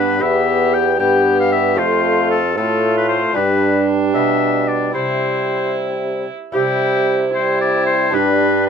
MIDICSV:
0, 0, Header, 1, 6, 480
1, 0, Start_track
1, 0, Key_signature, 0, "major"
1, 0, Tempo, 522648
1, 200, Time_signature, 6, 3, 24, 8
1, 3080, Tempo, 530035
1, 7914, End_track
2, 0, Start_track
2, 0, Title_t, "Oboe"
2, 0, Program_c, 0, 68
2, 0, Note_on_c, 0, 71, 81
2, 199, Note_on_c, 0, 76, 84
2, 213, Note_off_c, 0, 71, 0
2, 678, Note_on_c, 0, 79, 87
2, 692, Note_off_c, 0, 76, 0
2, 911, Note_off_c, 0, 79, 0
2, 917, Note_on_c, 0, 79, 86
2, 1271, Note_off_c, 0, 79, 0
2, 1287, Note_on_c, 0, 77, 78
2, 1390, Note_off_c, 0, 77, 0
2, 1396, Note_on_c, 0, 76, 83
2, 1637, Note_on_c, 0, 72, 80
2, 1651, Note_off_c, 0, 76, 0
2, 2108, Note_off_c, 0, 72, 0
2, 2114, Note_on_c, 0, 69, 80
2, 2352, Note_off_c, 0, 69, 0
2, 2362, Note_on_c, 0, 69, 80
2, 2714, Note_off_c, 0, 69, 0
2, 2729, Note_on_c, 0, 71, 73
2, 2830, Note_off_c, 0, 71, 0
2, 2835, Note_on_c, 0, 72, 79
2, 3076, Note_on_c, 0, 71, 86
2, 3090, Note_off_c, 0, 72, 0
2, 3545, Note_off_c, 0, 71, 0
2, 3798, Note_on_c, 0, 76, 83
2, 4282, Note_on_c, 0, 74, 67
2, 4296, Note_off_c, 0, 76, 0
2, 4517, Note_off_c, 0, 74, 0
2, 4522, Note_on_c, 0, 72, 61
2, 5233, Note_off_c, 0, 72, 0
2, 5965, Note_on_c, 0, 67, 78
2, 6650, Note_off_c, 0, 67, 0
2, 6696, Note_on_c, 0, 72, 77
2, 6926, Note_off_c, 0, 72, 0
2, 6934, Note_on_c, 0, 74, 84
2, 7159, Note_off_c, 0, 74, 0
2, 7164, Note_on_c, 0, 72, 81
2, 7412, Note_on_c, 0, 71, 83
2, 7426, Note_off_c, 0, 72, 0
2, 7885, Note_off_c, 0, 71, 0
2, 7914, End_track
3, 0, Start_track
3, 0, Title_t, "Viola"
3, 0, Program_c, 1, 41
3, 0, Note_on_c, 1, 62, 59
3, 188, Note_off_c, 1, 62, 0
3, 206, Note_on_c, 1, 67, 64
3, 886, Note_off_c, 1, 67, 0
3, 919, Note_on_c, 1, 67, 61
3, 1632, Note_on_c, 1, 65, 62
3, 1646, Note_off_c, 1, 67, 0
3, 2351, Note_off_c, 1, 65, 0
3, 2357, Note_on_c, 1, 65, 65
3, 3084, Note_on_c, 1, 62, 61
3, 3098, Note_off_c, 1, 65, 0
3, 4522, Note_off_c, 1, 62, 0
3, 4539, Note_on_c, 1, 64, 55
3, 5773, Note_off_c, 1, 64, 0
3, 5977, Note_on_c, 1, 64, 59
3, 6656, Note_off_c, 1, 64, 0
3, 6703, Note_on_c, 1, 64, 64
3, 7419, Note_on_c, 1, 62, 63
3, 7433, Note_off_c, 1, 64, 0
3, 7914, Note_off_c, 1, 62, 0
3, 7914, End_track
4, 0, Start_track
4, 0, Title_t, "Lute"
4, 0, Program_c, 2, 24
4, 0, Note_on_c, 2, 43, 49
4, 0, Note_on_c, 2, 62, 46
4, 0, Note_on_c, 2, 67, 46
4, 163, Note_off_c, 2, 67, 0
4, 168, Note_off_c, 2, 43, 0
4, 169, Note_off_c, 2, 62, 0
4, 174, Note_on_c, 2, 67, 45
4, 184, Note_on_c, 2, 71, 46
4, 201, Note_on_c, 2, 40, 51
4, 883, Note_off_c, 2, 40, 0
4, 916, Note_on_c, 2, 43, 54
4, 1590, Note_off_c, 2, 67, 0
4, 1595, Note_off_c, 2, 71, 0
4, 1599, Note_on_c, 2, 60, 48
4, 1601, Note_off_c, 2, 43, 0
4, 1611, Note_on_c, 2, 65, 47
4, 1623, Note_on_c, 2, 69, 49
4, 1636, Note_on_c, 2, 41, 51
4, 2321, Note_off_c, 2, 41, 0
4, 2364, Note_on_c, 2, 45, 56
4, 3025, Note_off_c, 2, 60, 0
4, 3031, Note_off_c, 2, 65, 0
4, 3037, Note_off_c, 2, 69, 0
4, 3048, Note_off_c, 2, 45, 0
4, 3062, Note_on_c, 2, 62, 47
4, 3074, Note_on_c, 2, 67, 48
4, 3090, Note_on_c, 2, 43, 51
4, 3767, Note_off_c, 2, 43, 0
4, 3803, Note_on_c, 2, 47, 47
4, 4475, Note_off_c, 2, 62, 0
4, 4481, Note_off_c, 2, 67, 0
4, 4487, Note_off_c, 2, 47, 0
4, 4502, Note_on_c, 2, 64, 38
4, 4514, Note_on_c, 2, 67, 39
4, 4524, Note_on_c, 2, 48, 45
4, 5696, Note_off_c, 2, 48, 0
4, 5926, Note_off_c, 2, 64, 0
4, 5932, Note_off_c, 2, 67, 0
4, 5949, Note_on_c, 2, 64, 47
4, 5960, Note_on_c, 2, 67, 49
4, 5973, Note_on_c, 2, 48, 53
4, 7356, Note_off_c, 2, 64, 0
4, 7362, Note_off_c, 2, 67, 0
4, 7368, Note_off_c, 2, 48, 0
4, 7382, Note_on_c, 2, 62, 45
4, 7394, Note_on_c, 2, 67, 45
4, 7402, Note_on_c, 2, 43, 53
4, 7914, Note_off_c, 2, 43, 0
4, 7914, Note_off_c, 2, 62, 0
4, 7914, Note_off_c, 2, 67, 0
4, 7914, End_track
5, 0, Start_track
5, 0, Title_t, "Trombone"
5, 0, Program_c, 3, 57
5, 0, Note_on_c, 3, 59, 60
5, 182, Note_off_c, 3, 59, 0
5, 198, Note_on_c, 3, 59, 64
5, 882, Note_off_c, 3, 59, 0
5, 918, Note_on_c, 3, 59, 64
5, 1635, Note_on_c, 3, 57, 62
5, 1649, Note_off_c, 3, 59, 0
5, 2204, Note_off_c, 3, 57, 0
5, 2360, Note_on_c, 3, 57, 65
5, 3088, Note_on_c, 3, 55, 64
5, 3101, Note_off_c, 3, 57, 0
5, 4524, Note_off_c, 3, 55, 0
5, 4536, Note_on_c, 3, 55, 53
5, 5714, Note_off_c, 3, 55, 0
5, 5976, Note_on_c, 3, 55, 63
5, 6655, Note_off_c, 3, 55, 0
5, 6700, Note_on_c, 3, 55, 63
5, 7395, Note_off_c, 3, 55, 0
5, 7402, Note_on_c, 3, 55, 62
5, 7914, Note_off_c, 3, 55, 0
5, 7914, End_track
6, 0, Start_track
6, 0, Title_t, "Bassoon"
6, 0, Program_c, 4, 70
6, 0, Note_on_c, 4, 43, 61
6, 174, Note_off_c, 4, 43, 0
6, 201, Note_on_c, 4, 40, 62
6, 914, Note_on_c, 4, 43, 57
6, 928, Note_off_c, 4, 40, 0
6, 1640, Note_on_c, 4, 41, 62
6, 1654, Note_off_c, 4, 43, 0
6, 2355, Note_on_c, 4, 45, 59
6, 2369, Note_off_c, 4, 41, 0
6, 2933, Note_off_c, 4, 45, 0
6, 3089, Note_on_c, 4, 43, 64
6, 3797, Note_on_c, 4, 47, 54
6, 3811, Note_off_c, 4, 43, 0
6, 4513, Note_off_c, 4, 47, 0
6, 4519, Note_on_c, 4, 48, 53
6, 5706, Note_off_c, 4, 48, 0
6, 5967, Note_on_c, 4, 48, 62
6, 7365, Note_off_c, 4, 48, 0
6, 7402, Note_on_c, 4, 43, 65
6, 7914, Note_off_c, 4, 43, 0
6, 7914, End_track
0, 0, End_of_file